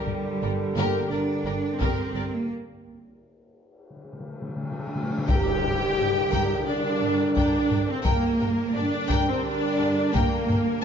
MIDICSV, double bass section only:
0, 0, Header, 1, 2, 480
1, 0, Start_track
1, 0, Key_signature, -2, "minor"
1, 0, Tempo, 694444
1, 1735, Time_signature, 4, 2, 24, 8
1, 3656, Key_signature, -2, "minor"
1, 7497, End_track
2, 0, Start_track
2, 0, Title_t, "Double bass section"
2, 0, Program_c, 0, 48
2, 297, Note_on_c, 0, 31, 61
2, 353, Note_off_c, 0, 31, 0
2, 531, Note_on_c, 0, 31, 89
2, 586, Note_off_c, 0, 31, 0
2, 767, Note_on_c, 0, 31, 57
2, 823, Note_off_c, 0, 31, 0
2, 1004, Note_on_c, 0, 31, 54
2, 1059, Note_off_c, 0, 31, 0
2, 1246, Note_on_c, 0, 31, 75
2, 1302, Note_off_c, 0, 31, 0
2, 1487, Note_on_c, 0, 31, 45
2, 1542, Note_off_c, 0, 31, 0
2, 3650, Note_on_c, 0, 43, 84
2, 3705, Note_off_c, 0, 43, 0
2, 3889, Note_on_c, 0, 43, 56
2, 3944, Note_off_c, 0, 43, 0
2, 4137, Note_on_c, 0, 43, 59
2, 4192, Note_off_c, 0, 43, 0
2, 4372, Note_on_c, 0, 43, 91
2, 4428, Note_off_c, 0, 43, 0
2, 4855, Note_on_c, 0, 43, 55
2, 4910, Note_off_c, 0, 43, 0
2, 5088, Note_on_c, 0, 43, 75
2, 5143, Note_off_c, 0, 43, 0
2, 5329, Note_on_c, 0, 43, 57
2, 5384, Note_off_c, 0, 43, 0
2, 5571, Note_on_c, 0, 43, 79
2, 5626, Note_off_c, 0, 43, 0
2, 5808, Note_on_c, 0, 43, 65
2, 5864, Note_off_c, 0, 43, 0
2, 6055, Note_on_c, 0, 43, 65
2, 6110, Note_off_c, 0, 43, 0
2, 6284, Note_on_c, 0, 43, 85
2, 6340, Note_off_c, 0, 43, 0
2, 6769, Note_on_c, 0, 43, 59
2, 6824, Note_off_c, 0, 43, 0
2, 7019, Note_on_c, 0, 43, 79
2, 7074, Note_off_c, 0, 43, 0
2, 7258, Note_on_c, 0, 43, 56
2, 7313, Note_off_c, 0, 43, 0
2, 7497, End_track
0, 0, End_of_file